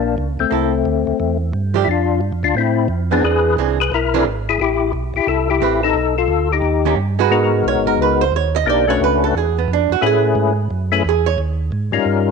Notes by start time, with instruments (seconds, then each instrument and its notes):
Already playing: tonewheel organ A#1 A#3 D4
0.18 tonewheel organ C#2
0.39 tonewheel organ C#2 A3 C4
0.51 tonewheel organ C2, hollow-body jazz guitar A#3 E4 A4
0.85 tonewheel organ D2
1.07 tonewheel organ D2
1.20 tonewheel organ E2
1.53 tonewheel organ G2
1.74 hollow-body jazz guitar F3 A3 D4 G4
1.85 tonewheel organ F2 E4
1.89 tonewheel organ D4 F4
2.21 tonewheel organ G2
2.32 tonewheel organ F2
2.43 tonewheel organ D2 D4 F4
2.55 tonewheel organ A2 C4 E4
2.88 tonewheel organ F2
3.11 hollow-body jazz guitar E3 C4 D4 G#4, tonewheel organ B3 D4
3.23 tonewheel organ E2 G#4 B4
3.57 tonewheel organ C2, hollow-body jazz guitar E3 C4 D4 G#4
3.80 tonewheel organ G#4 B4
3.92 tonewheel organ B1 E4 A#4
4.14 hollow-body jazz guitar E3 C4 D4 G#4
4.25 tonewheel organ G#1
4.49 tonewheel organ E4 G#4
4.60 tonewheel organ A1 E4 G4
4.93 tonewheel organ B1
5.14 tonewheel organ B1 E4 G4
5.27 tonewheel organ C2 E4 A4
5.50 tonewheel organ E4 G4
5.61 tonewheel organ A1, hollow-body jazz guitar A3 C4 G4 B4
5.83 tonewheel organ D#4 A4
5.94 tonewheel organ B1
6.18 tonewheel organ F4 A4
6.28 tonewheel organ D2
6.53 tonewheel organ D#4 G4
6.62 tonewheel organ D#2
6.85 hollow-body jazz guitar D#3 A#3 C#4 G4
6.96 tonewheel organ G2
7.19 hollow-body jazz guitar G#3 D#4 F#4 B4
7.30 tonewheel organ G#2 G#3 B3 D#4 F#4 A#4
7.64 tonewheel organ B1, hollow-body jazz guitar C#5
7.75 tonewheel organ G#1
7.86 tonewheel organ F#1, hollow-body jazz guitar A#4
7.98 tonewheel organ C#2
8.02 hollow-body jazz guitar B4
8.21 hollow-body jazz guitar C5
8.32 tonewheel organ D#2, hollow-body jazz guitar C#5
8.56 hollow-body jazz guitar D#5
8.65 tonewheel organ B1 A#3 D4 D#4 G4 C5
8.70 hollow-body jazz guitar D5
8.87 tonewheel organ A3 C#4 D4 F#4 B4, hollow-body jazz guitar C#5
9.00 tonewheel organ C#2, hollow-body jazz guitar B4
9.24 hollow-body jazz guitar A4
9.34 tonewheel organ E2, hollow-body jazz guitar G#4
9.58 hollow-body jazz guitar B3
9.68 tonewheel organ F2
9.73 hollow-body jazz guitar D4
9.90 tonewheel organ F2, hollow-body jazz guitar F#4
10.01 tonewheel organ A2 A3 C#4 E4 G#4 B4
10.06 hollow-body jazz guitar G#4
10.35 tonewheel organ G#2
10.71 tonewheel organ F#2
10.92 tonewheel organ A3 C#4 E4 G#4 B4
11.04 tonewheel organ E2
11.09 hollow-body jazz guitar G#4
11.26 hollow-body jazz guitar C#5
11.38 tonewheel organ D#2
11.72 tonewheel organ G#2
11.92 tonewheel organ G#2 G3 C#4 D#4 F4 A#4
12.05 tonewheel organ G2